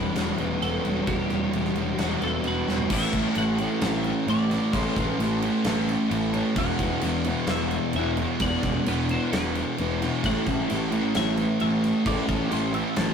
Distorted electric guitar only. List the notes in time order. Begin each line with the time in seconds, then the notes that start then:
Already playing: E3 G3 E4 B4
0.17 F#4
0.40 B3
0.62 F#4
0.85 G3
1.08 E3
1.32 G3
1.53 E3
1.77 G3
2.00 F#4
2.21 B3
2.45 F#4
2.68 G3
2.89 A2 E3 A3
3.13 E3 A3
3.36 A2 E3 A3
3.59 E3 A3
4.28 A2 E3 A3
4.50 E3 A3
4.73 A2 E3 A3
4.97 E3 A3
5.20 A2 E3 A3
5.43 E3 A3
6.10 A2 E3 A3
6.32 E3 A3
6.55 E2 B2 E3
6.80 B2 E3
7.02 E2 B2 E3
7.25 B2 E3
7.96 E2 B2 E3
8.18 B2 E3
8.40 E2 B2 E3
8.63 B2 E3
8.86 E2 B2 E3
9.10 B2 E3
9.79 E2 B2 E3
10.01 B2 E3
10.24 A2 E3 A3
10.46 E3 A3
10.67 A2 E3 A3
10.91 E3 A3
11.60 A2 E3 A3
11.83 E3 A3
12.04 A2 E3 A3
12.27 E3 A3
12.49 A2 E3 A3
12.73 E3 A3